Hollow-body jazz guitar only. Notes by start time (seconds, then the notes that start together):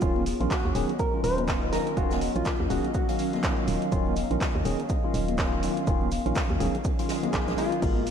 Already playing: F4
0.51 F#4
0.99 A#4
1.24 C5
1.73 A#4
1.97 F#4
2.36 F4
2.70 F#4
2.95 F#4
7.58 F4